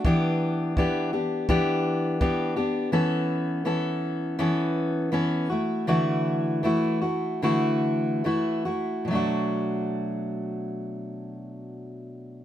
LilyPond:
<<
  \new Staff \with { instrumentName = "Steel-string acoustic guitar" } { \time 4/4 \key b \minor \tempo 4 = 79 <e b d' g'>4 <e b d' g'>8 <b d' g'>8 <e b d' g'>4 <e b d' g'>8 <b d' g'>8 | <e b cis' a'>4 <e b cis' a'>4 <e b cis' a'>4 <e b cis' a'>8 <a e' fis'>8 | <d e a e' fis'>4 <e a e' fis'>8 <a e' fis'>8 <d e a e' fis'>4 <e a e' fis'>8 <a e' fis'>8 | <b, fis a d' fis'>1 | }
  \new DrumStaff \with { instrumentName = "Drums" } \drummode { \time 4/4 bd4 bd4 bd4 bd4 | r4 r4 r4 r4 | r4 r4 r4 r4 | r4 r4 r4 r4 | }
>>